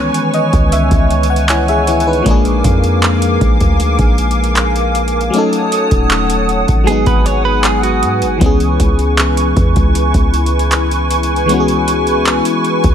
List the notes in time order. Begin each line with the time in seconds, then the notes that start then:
Already playing: C#2 D#3 E3 G#3 B3 C#4 B4 C#5 G#5 C#6
0.14 closed hi-hat
0.34 D#5, closed hi-hat
0.53 C#2, kick, closed hi-hat
0.72 E5, closed hi-hat
0.91 C#2, kick, closed hi-hat
1.10 closed hi-hat
1.23 closed hi-hat
1.30 F#5
1.36 closed hi-hat
1.49 E4 C#5 G#5, clap, closed hi-hat
1.68 G#4 E5, closed hi-hat
1.87 E4 C#5, closed hi-hat, open hi-hat
2.00 closed hi-hat
2.07 D#4 B4
2.13 closed hi-hat
2.22 A#1 F3 G#3 A#4 F5 D6, kick, closed hi-hat
2.26 A#3 D4
2.30 G#4
2.45 closed hi-hat
2.64 F2, kick, closed hi-hat
2.84 closed hi-hat
3.03 clap, closed hi-hat
3.22 closed hi-hat
3.41 A#1, kick, closed hi-hat
3.60 D2, kick, closed hi-hat
3.80 closed hi-hat
3.99 A#1, kick, closed hi-hat
4.18 closed hi-hat
4.31 closed hi-hat
4.44 closed hi-hat
4.56 clap, closed hi-hat
4.76 closed hi-hat
4.95 closed hi-hat
5.08 closed hi-hat
5.21 closed hi-hat
5.30 F#3 A3 C#5 F#5 A5 D#6, closed hi-hat
5.34 C#4 D#4
5.38 A4
5.53 closed hi-hat
5.72 closed hi-hat
5.91 D#1, kick, closed hi-hat
6.10 clap, closed hi-hat
6.30 closed hi-hat
6.49 closed hi-hat
6.68 G#1, kick, closed hi-hat
6.84 F#3 G#3 B3 G#4 B4 G#5 D#6, closed hi-hat
6.90 D#4 G#4
7.06 G#1 B4, kick, closed hi-hat
7.26 C#5, closed hi-hat
7.45 B4
7.64 G#4, clap, closed hi-hat
7.83 F#4, closed hi-hat
8.03 G#2, closed hi-hat, open hi-hat
8.22 G#1, closed hi-hat
8.38 C#2 E3 G#3 E4 B4 G#5 C#6, kick, closed hi-hat
8.42 B3 C#4 G#4
8.60 closed hi-hat
8.80 C#2, kick, closed hi-hat
8.99 closed hi-hat
9.18 clap, closed hi-hat
9.37 closed hi-hat
9.56 E2, kick, closed hi-hat
9.76 C#2, kick, closed hi-hat
9.95 closed hi-hat
10.14 C#2, kick, closed hi-hat
10.34 closed hi-hat
10.46 closed hi-hat
10.59 closed hi-hat
10.72 clap, closed hi-hat
10.91 closed hi-hat
11.11 closed hi-hat
11.23 closed hi-hat
11.36 closed hi-hat
11.46 E3 G#3, closed hi-hat
11.50 B3 C#4
11.54 F#4
11.60 G#4
11.68 closed hi-hat
11.88 closed hi-hat
12.07 closed hi-hat
12.26 clap, closed hi-hat
12.45 closed hi-hat
12.65 closed hi-hat
12.84 C#2, kick, closed hi-hat